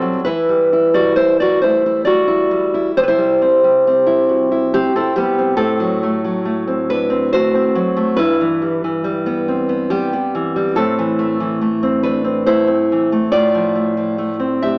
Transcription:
nylon-string guitar
Already playing: B2 G3 C4 E4 A4
0.01 F#3
0.25 E3 E4 B4
0.49 G3
0.73 E4
0.94 G3 F#4 D5
1.16 E4 C5
1.40 G3 F#4 D5
1.62 A3 E4 C5
1.86 E4
2.05 G3 F#4 D5
2.27 E4
2.51 G3
2.74 E4
2.97 C3 C5
3.03 B4
3.08 E4 C5
3.18 G3
3.42 C4
3.64 G3
3.87 C4
4.06 E4
4.29 F#4
4.52 E4
4.74 C4 G4
4.96 C4 E4 A4
5.16 G3 B3 G4
5.39 C4
5.57 A2 C4 A4
5.80 F#3
6.03 A3
6.24 F#3
6.45 A3
6.67 C4
6.90 D4 B4
7.10 C4
7.33 A3 F#4 C5
7.55 C4
7.75 F#3
7.97 A3
8.17 G2 E4 B4
8.41 E3
8.62 G3
8.84 E3
9.04 G3
9.26 B3
9.48 C4
9.69 B3
9.90 G3 B3 G4
10.13 B3
10.35 E3
10.56 G3
10.76 A2 C4 A4
10.99 E3
11.19 A3
11.40 E3
11.61 A3
11.83 C4
12.03 D4 B4
12.24 C4
12.47 A3 E4 C5
12.67 C4
12.92 E3
13.12 A3
13.32 A2 F4 D5
13.55 F3
13.75 A3
13.97 F3
14.18 A3
14.40 C4
14.62 D4 G4 E5

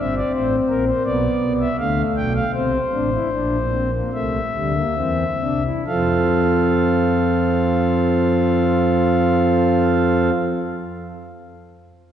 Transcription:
pipe organ
0.00 G1 G2 C4 E5
0.16 D5
0.33 A1 A2 C5
0.69 A#1 A#2 A#4
0.87 C5
1.05 B1 B2 B3 D5
1.42 C2 C3
1.60 E5
1.78 D2 D3 A3 F5
2.17 B1 B2 G5
2.35 F5
2.54 C2 C3 C4 C5
2.92 A1 A2 D4
3.12 E4
3.31 A#1 A#2 D4
3.72 C4
3.92 A#3
4.13 C2 C3 A3 E5
4.54 D2 D3 G3
4.75 A#3
4.96 E2 E3 C4
5.41 C2 C3 D4
5.64 E4
5.87 F2 F3 C4 F4 A4 F5

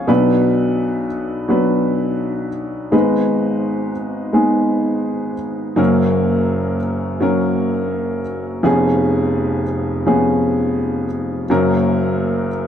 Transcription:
upright piano
Already playing: F3 B3 C#4 G#4 C#5 F5 G#5
0.07 B1 B2 F#3 B3 D4 B4
1.49 F#3 B3 D4 B4
2.92 G#1 G#2 G#3 B3 D#4 B4
4.33 G#3 B3 D#4 G#4
5.76 F#1 F#2 F#3 A#3 C#4 A#4
7.21 F#3 A#3 C#4 A#4
8.63 F1 F2 F3 B3 C#4 G#4
10.06 F3 B3 C#4 G#4
11.50 F#1 F#2 F#3 A#3 C#4 A#4

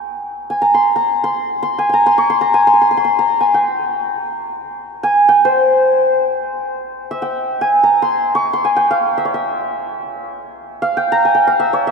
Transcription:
santur
Already playing: G5 A#5
0.50 G#5
0.62 A#5
0.74 C6
0.96 A#5
1.24 C6
1.63 C6
1.78 G#5
1.89 G#5
1.94 A#5
2.06 C6
2.18 C#6
2.30 C6
2.41 A#5
2.54 G#5
2.67 C6
2.73 C6
2.81 C6
2.91 C6
2.97 C6
3.05 C6
3.19 A#5
3.41 G#5
3.54 G5
5.03 G#5
5.29 G5
5.45 C5
7.11 E5
7.22 G5
7.61 G#5
7.83 A#5
8.02 C6
8.35 C#6
8.53 C6
8.65 G#5
8.76 G5
8.91 F5
9.18 E5
9.25 C#5
9.34 E5
10.82 F5
10.97 G5
11.12 A#5
11.25 G#5
11.35 G5
11.47 F5
11.60 E5
11.73 C#5
11.87 E5

